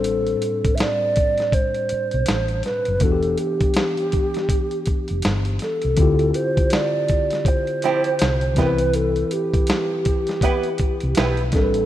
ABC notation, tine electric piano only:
X:1
M:4/4
L:1/8
Q:"Swing 16ths" 1/4=81
K:C
V:1 name="Tine electric piano"
[A,,G,CDc]6- [A,,G,CDc] z | [E,B,D^FG]8 | [D,CEFG]6- [D,CEFG] [E,CE_B=B]- | [E,CE_B=B]6- [E,CE_B=B] [A,,G,CD_B=B] |]